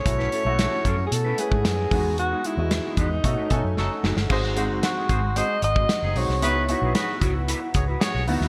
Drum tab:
CC |----------------|----------------|x---------------|----------------|
HH |x-x-x-x-x-x-x-o-|x-x-x-x-x-x-----|--x-x-x-x-x-x-o-|x-x-x-x-x-x-x-o-|
SD |-o--o-------o---|----o-------o-oo|-o--o-------o--o|----o-------o--o|
BD |o-----o----o--o-|------o-o-o-----|o-----o----o----|------o---o-----|